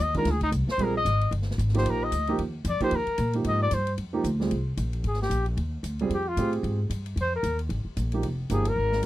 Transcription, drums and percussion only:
0.14 kick, ride
0.25 snare, ride
0.41 kick, ride
0.52 hi-hat pedal, ride
0.68 snare
0.79 ride
1.06 hi-hat pedal, ride
1.21 ride
1.32 ride
1.42 snare
1.51 snare
1.59 hi-hat pedal, ride
1.68 snare
1.74 snare, ride
1.86 ride
2.12 hi-hat pedal, ride
2.27 ride
2.39 ride
2.65 hi-hat pedal, ride
2.80 kick, ride
2.91 ride
3.07 ride
3.18 hi-hat pedal, ride
3.33 ride
3.44 ride
3.71 hi-hat pedal, ride
3.87 ride
3.98 ride
4.24 hi-hat pedal, ride
4.41 snare
4.51 ride
4.77 hi-hat pedal, ride
4.93 ride
5.04 ride
5.13 snare
5.22 snare
5.31 hi-hat pedal, ride
5.46 ride
5.57 ride
5.84 hi-hat pedal, ride
5.99 ride
6.10 ride
6.37 hi-hat pedal, ride
6.53 ride
6.64 ride
6.90 hi-hat pedal, ride
7.06 ride
7.17 ride
7.43 hi-hat pedal, ride
7.59 ride
7.70 ride
7.97 hi-hat pedal, ride
8.12 ride
8.23 ride
8.50 hi-hat pedal, ride
8.65 ride
8.92 snare
9.03 hi-hat pedal, ride

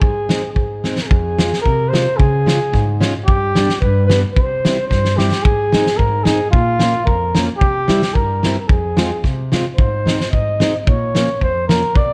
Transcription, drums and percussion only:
0.02 kick
0.29 snare
0.56 kick
0.84 snare
0.98 snare
1.11 kick
1.38 snare
1.53 snare
1.66 kick
1.94 snare
2.20 kick
2.47 snare
2.73 kick, snare
3.01 snare
3.28 kick
3.55 snare
3.69 snare
3.82 kick
4.10 snare
4.37 kick
4.65 snare
4.91 kick, snare
5.05 snare
5.18 snare
5.32 snare
5.45 kick
5.72 snare
5.86 snare
5.99 kick
6.25 snare
6.53 kick
6.79 snare
7.07 kick
7.35 snare
7.61 kick
7.88 snare
8.02 snare
8.15 kick
8.43 snare
8.69 kick
8.97 snare
9.24 kick, snare
9.52 snare
9.78 kick
10.07 snare
10.20 snare
10.33 kick
10.60 snare
10.87 kick
11.15 snare
11.41 kick
11.69 snare
11.95 kick

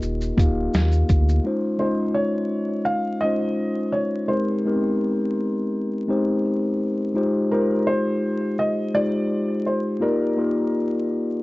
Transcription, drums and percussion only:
0.02 shaker
0.21 shaker
0.38 kick, closed hi-hat, shaker
0.74 snare, shaker
0.92 shaker
1.09 kick, closed hi-hat, shaker
1.29 shaker

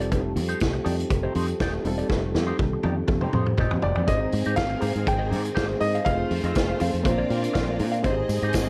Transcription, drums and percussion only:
0.01 closed hi-hat
0.12 kick, closed hi-hat
0.36 open hi-hat
0.49 closed hi-hat
0.60 kick, snare, closed hi-hat
0.86 open hi-hat
1.00 closed hi-hat
1.10 kick, closed hi-hat
1.35 open hi-hat
1.48 closed hi-hat
1.60 kick, snare, closed hi-hat
1.85 open hi-hat
1.99 closed hi-hat
2.10 kick, snare
2.35 snare
2.59 kick, high tom
2.83 high tom
3.08 kick, mid tom
3.21 mid tom
3.33 mid tom
3.46 mid tom
3.57 kick, mid tom
3.71 floor tom
3.82 floor tom
3.95 floor tom
4.08 kick, closed hi-hat
4.32 open hi-hat
4.45 closed hi-hat
4.56 kick, snare, closed hi-hat
4.81 open hi-hat
4.96 closed hi-hat
5.07 kick, closed hi-hat
5.32 open hi-hat
5.45 closed hi-hat
5.57 kick, snare, closed hi-hat
5.81 open hi-hat
5.95 closed hi-hat
6.06 kick, closed hi-hat
6.31 open hi-hat
6.44 closed hi-hat
6.55 kick, snare, closed hi-hat
6.80 open hi-hat
6.95 closed hi-hat
7.05 kick, closed hi-hat
7.30 open hi-hat
7.44 closed hi-hat
7.55 kick, snare, closed hi-hat
7.79 open hi-hat
7.94 closed hi-hat
8.04 kick, closed hi-hat
8.29 open hi-hat, tambourine
8.42 closed hi-hat
8.53 kick, snare, closed hi-hat, tambourine

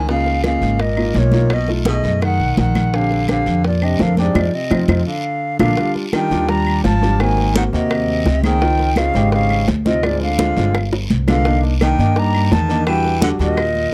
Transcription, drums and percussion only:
0.08 high bongo, high conga, long guiro
0.26 high bongo, high conga
0.44 high bongo, high conga, short guiro, claves
0.62 high bongo, high conga, short guiro
0.79 high bongo, high conga, long guiro
0.97 high conga, claves
1.14 high bongo, low bongo, high conga, short guiro
1.32 high bongo, high conga, short guiro
1.50 high bongo, high conga, long guiro, claves
1.68 high bongo, high conga
1.85 high bongo, high conga, short guiro
2.03 high bongo, high conga, short guiro
2.22 high bongo, high conga, long guiro, claves
2.40 high conga
2.57 high bongo, low bongo, high conga, short guiro
2.75 high bongo, high conga, short guiro, claves
2.93 high bongo, high conga, long guiro
3.11 high bongo, high conga
3.28 high bongo, high conga, short guiro, claves
3.46 high bongo, high conga, short guiro
3.64 high bongo, high conga, long guiro
3.82 high conga, claves
3.99 high bongo, low bongo, high conga, short guiro
4.17 high bongo, high conga, short guiro
4.35 low bongo, high conga, long guiro, claves
4.71 low bongo, high conga, long guiro, claves
4.88 low bongo, high conga, long guiro, claves
5.59 low bongo, high conga, long guiro, claves
5.77 high bongo, high conga, long guiro
5.95 high bongo, high conga
6.13 high bongo, high conga, short guiro, claves
6.31 high bongo, high conga, short guiro
6.49 high bongo, high conga, long guiro
6.67 high conga, claves
6.84 high bongo, low bongo, high conga, short guiro
7.03 high bongo, short guiro
7.20 high bongo, high conga, long guiro, claves
7.38 high bongo, high conga
7.56 high bongo, high conga, short guiro
7.73 high bongo, high conga, short guiro
7.90 high bongo, high conga, long guiro, claves
8.08 high conga
8.26 high bongo, low bongo, high conga, short guiro
8.43 high bongo, high conga, short guiro, claves
8.62 high bongo, high conga, long guiro
8.79 high bongo, high conga
8.96 high bongo, high conga, short guiro, claves
9.14 high bongo, high conga, short guiro
9.32 high bongo, high conga, long guiro
9.50 high conga, claves
9.68 high bongo, low bongo, high conga, short guiro
9.86 high bongo, high conga, short guiro
10.03 high bongo, high conga, long guiro, claves
10.21 high bongo, high conga
10.39 high bongo, high conga, short guiro
10.57 high bongo, high conga, short guiro
10.75 high bongo, high conga, long guiro, claves
10.93 low bongo, high conga
11.10 high conga, short guiro
11.28 low bongo, high conga, short guiro, claves
11.45 high bongo, high conga, long guiro
11.63 high bongo, high conga
11.81 high bongo, high conga, short guiro, claves
11.99 high bongo, high conga, short guiro
12.16 high bongo, high conga, long guiro
12.34 high conga, claves
12.52 high bongo, low bongo, high conga, short guiro
12.69 high bongo, short guiro
12.87 high bongo, high conga, long guiro, claves
13.04 high bongo, high conga
13.22 high bongo, high conga, short guiro
13.39 high bongo, high conga, short guiro
13.57 high bongo, high conga, long guiro, claves
13.75 high conga

